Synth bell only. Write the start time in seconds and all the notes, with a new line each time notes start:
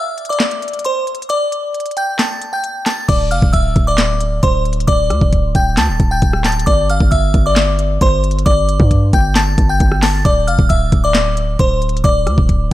Already playing: E5 E6
0.29 D5 D6
0.85 C5 C6
1.29 D5 D6
1.97 G5 G6
2.19 A5 A6
2.53 G5 G6
2.86 A5 A6
3.08 D5 D6
3.31 F5 F6
3.53 E5 E6
3.87 D5 D6
4.43 C5 C6
4.87 D5 D6
5.55 G5 G6
5.78 A5 A6
6.11 G5 G6
6.45 A5 A6
6.66 D5 D6
6.90 F5 F6
7.11 E5 E6
7.46 D5 D6
8.02 C5 C6
8.46 D5 D6
9.13 G5 G6
9.36 A5 A6
9.69 G5 G6
10.02 A5 A6
10.25 D5 D6
10.47 F5 F6
10.69 E5 E6
11.04 D5 D6
11.59 C5 C6
12.04 D5 D6